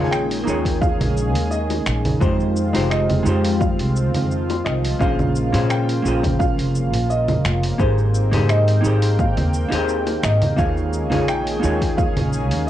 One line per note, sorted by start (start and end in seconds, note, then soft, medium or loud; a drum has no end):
0.00 0.41 A#1 loud
0.00 4.97 D#3 medium
0.00 10.55 G#3 medium
0.00 0.42 A#3 medium
0.00 2.19 A#3 medium
0.00 2.19 C#4 medium
0.00 0.42 D#4 medium
0.00 0.43 F4 medium
0.00 0.43 G#4 medium
0.00 2.19 G#4 medium
0.00 0.43 C#5 medium
0.04 0.11 G#5 medium
0.11 0.83 G5 loud
0.11 finger snap medium
0.11 cabasa soft
0.31 open hi-hat soft
0.31 cabasa soft
0.44 0.94 D#2 medium
0.44 2.16 A#3 medium
0.44 2.17 D#4 medium
0.44 2.17 F4 medium
0.44 cabasa medium
0.48 2.18 G#4 medium
0.48 2.19 C#5 medium
0.65 kick medium
0.65 open hi-hat medium
0.65 cabasa soft
0.81 1.53 F5 loud
0.81 kick loud
0.81 high bongo medium
0.81 cabasa soft
1.00 1.35 A#1 medium
1.00 open hi-hat soft
1.00 low conga medium
1.00 cabasa soft
1.17 cabasa medium
1.35 1.81 D#2 loud
1.35 open hi-hat medium
1.35 cabasa soft
1.51 2.23 D#5 loud
1.51 cabasa soft
1.70 open hi-hat soft
1.70 high bongo medium
1.70 cabasa soft
1.86 2.14 A#1 medium
1.86 finger snap medium
1.86 cabasa medium
2.05 open hi-hat medium
2.05 low conga medium
2.05 cabasa soft
2.20 2.76 F2 loud
2.20 7.76 F3 medium
2.20 2.70 G#3 medium
2.20 4.98 C4 medium
2.20 2.70 D#4 medium
2.20 2.70 F4 medium
2.20 7.76 F4 loud
2.20 2.71 G4 medium
2.20 2.93 C5 loud
2.20 2.71 C5 medium
2.20 kick loud
2.20 cabasa soft
2.40 cabasa soft
2.57 cabasa medium
2.73 3.20 F1 medium
2.73 3.21 G#3 medium
2.73 3.22 D#4 medium
2.73 3.22 F4 medium
2.73 3.22 G4 medium
2.73 3.23 C5 medium
2.73 open hi-hat medium
2.73 cabasa soft
2.90 3.63 D#5 loud
2.90 finger snap medium
2.90 cabasa soft
3.10 open hi-hat soft
3.10 low conga medium
3.10 cabasa soft
3.23 3.73 F2 loud
3.23 4.95 G#3 medium
3.23 4.96 D#4 medium
3.23 4.97 F4 medium
3.23 cabasa medium
3.28 4.97 G4 medium
3.28 4.98 C5 medium
3.45 open hi-hat medium
3.45 cabasa soft
3.60 4.26 F5 medium
3.60 kick loud
3.60 high bongo medium
3.60 cabasa soft
3.79 4.15 C2 medium
3.79 open hi-hat soft
3.79 cabasa soft
3.96 cabasa medium
4.14 4.60 F2 loud
4.14 open hi-hat medium
4.14 low conga medium
4.14 cabasa soft
4.31 cabasa soft
4.50 open hi-hat soft
4.50 high bongo medium
4.50 cabasa soft
4.65 4.94 C2 medium
4.65 5.01 D#5 loud
4.65 finger snap medium
4.65 cabasa medium
4.84 open hi-hat medium
4.84 cabasa soft
4.99 5.55 A#1 loud
4.99 7.76 C#3 medium
4.99 5.49 A#3 medium
4.99 12.70 A#3 medium
4.99 5.49 C#4 medium
4.99 5.49 F4 medium
4.99 5.50 G#4 medium
4.99 5.50 C5 medium
4.99 5.72 F5 loud
4.99 kick loud
4.99 cabasa soft
5.19 low conga medium
5.19 cabasa soft
5.36 cabasa medium
5.52 6.00 A#2 loud
5.52 6.01 A#3 medium
5.52 6.01 C#4 medium
5.52 6.01 F4 medium
5.52 6.02 G#4 medium
5.52 6.02 C5 medium
5.52 open hi-hat medium
5.52 cabasa soft
5.70 6.42 G5 loud
5.70 finger snap medium
5.70 cabasa medium
5.89 open hi-hat soft
5.89 cabasa soft
6.02 6.52 A#1 medium
6.02 7.74 A#3 medium
6.02 7.75 C#4 medium
6.02 7.76 F4 medium
6.02 cabasa medium
6.07 7.76 G#4 medium
6.07 7.77 C5 medium
6.23 kick medium
6.23 open hi-hat medium
6.23 low conga medium
6.23 cabasa soft
6.39 7.11 F5 loud
6.39 kick loud
6.39 high bongo medium
6.39 cabasa soft
6.58 6.93 F1 medium
6.58 open hi-hat soft
6.58 cabasa soft
6.75 cabasa medium
6.93 7.39 A#1 loud
6.93 open hi-hat medium
6.93 cabasa soft
7.10 7.82 D#5 medium
7.10 cabasa soft
7.28 open hi-hat soft
7.28 high bongo medium
7.28 low conga medium
7.28 cabasa soft
7.45 7.73 F1 medium
7.45 finger snap medium
7.45 cabasa medium
7.63 open hi-hat medium
7.63 cabasa soft
7.78 8.34 G#1 loud
7.78 12.70 D#3 medium
7.78 8.28 A#3 medium
7.78 10.56 C4 medium
7.78 8.28 D#4 medium
7.78 8.28 G4 medium
7.78 8.29 G#4 medium
7.78 8.45 C5 loud
7.78 8.29 C5 medium
7.78 10.56 G5 loud
7.78 kick loud
7.78 cabasa soft
7.98 cabasa soft
8.15 cabasa medium
8.31 8.78 G#2 loud
8.31 8.80 A#3 medium
8.31 8.80 D#4 medium
8.31 8.80 G4 medium
8.31 8.81 G#4 medium
8.31 8.81 C5 medium
8.31 open hi-hat medium
8.31 low conga medium
8.31 cabasa soft
8.49 9.21 D#5 loud
8.49 finger snap medium
8.49 cabasa soft
8.68 open hi-hat soft
8.68 cabasa soft
8.81 9.31 G#1 medium
8.81 9.67 A#3 medium
8.81 9.68 D#4 medium
8.81 9.68 G4 medium
8.81 cabasa medium
8.85 9.69 G#4 medium
8.85 9.70 C5 medium
9.02 open hi-hat medium
9.02 cabasa soft
9.19 9.85 F5 medium
9.19 kick loud
9.19 high bongo medium
9.19 cabasa soft
9.37 9.64 D#2 medium
9.37 open hi-hat soft
9.37 low conga medium
9.37 cabasa soft
9.54 cabasa medium
9.68 10.18 D#2 medium
9.68 10.53 A#3 loud
9.68 10.53 D#4 medium
9.68 10.54 G4 medium
9.68 open hi-hat medium
9.68 cabasa soft
9.73 10.55 G#4 medium
9.73 10.56 C5 loud
9.89 cabasa soft
10.06 open hi-hat soft
10.06 high bongo medium
10.06 cabasa soft
10.23 10.38 G#1 loud
10.23 10.59 D#5 loud
10.23 finger snap medium
10.23 cabasa medium
10.42 open hi-hat soft
10.42 low conga medium
10.42 cabasa soft
10.56 11.12 D#2 loud
10.56 12.70 G#3 medium
10.56 11.06 A#3 medium
10.56 12.70 C#4 medium
10.56 11.07 D#4 medium
10.56 11.07 F4 medium
10.56 11.07 G#4 medium
10.56 12.70 G#4 medium
10.56 11.08 C#5 medium
10.56 11.30 F5 loud
10.56 kick loud
10.56 cabasa soft
10.77 cabasa soft
10.93 cabasa medium
11.10 11.58 A#1 loud
11.10 11.58 A#3 medium
11.10 11.59 D#4 medium
11.10 11.59 F4 medium
11.10 11.59 G#4 medium
11.10 11.60 C#5 medium
11.10 open hi-hat medium
11.10 low conga medium
11.10 cabasa soft
11.28 12.00 G5 loud
11.28 finger snap medium
11.28 cabasa soft
11.47 open hi-hat soft
11.47 cabasa soft
11.59 12.70 A#3 medium
11.59 12.70 D#4 medium
11.59 12.70 F4 medium
11.59 cabasa medium
11.64 12.10 D#2 loud
11.64 12.70 G#4 medium
11.64 12.70 C#5 medium
11.82 kick medium
11.82 open hi-hat medium
11.82 cabasa soft
11.97 12.64 F5 loud
11.97 kick loud
11.97 high bongo medium
11.97 cabasa soft
12.17 12.52 A#1 medium
12.17 open hi-hat soft
12.17 low conga medium
12.17 cabasa soft
12.33 cabasa medium
12.51 12.70 D#2 loud
12.51 open hi-hat medium
12.51 cabasa soft